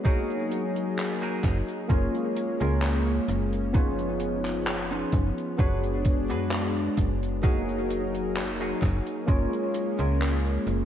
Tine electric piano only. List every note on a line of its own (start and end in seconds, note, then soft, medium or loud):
0.04 1.81 A#3 medium
0.04 1.81 D#4 medium
0.04 1.81 F#4 medium
0.04 1.82 G#4 medium
0.04 1.82 C#5 medium
1.88 3.65 A#3 medium
1.88 3.66 C#4 medium
1.88 3.66 F4 medium
1.88 3.66 G#4 medium
1.88 3.67 C#5 medium
3.73 5.50 B3 medium
3.73 5.50 D#4 medium
3.73 5.51 F4 medium
3.73 5.51 G#4 medium
3.73 5.51 C#5 medium
5.57 7.34 B3 medium
5.57 7.35 D4 medium
5.57 7.35 F#4 medium
5.57 7.35 G#4 medium
5.57 7.36 C#5 medium
7.42 9.19 A#3 medium
7.42 9.19 D#4 medium
7.42 9.20 F#4 medium
7.42 9.20 G#4 medium
7.42 9.21 C#5 medium
9.26 10.85 A#3 medium
9.26 10.85 C#4 medium
9.26 10.85 F4 medium
9.26 10.85 G#4 medium
9.26 10.85 C#5 medium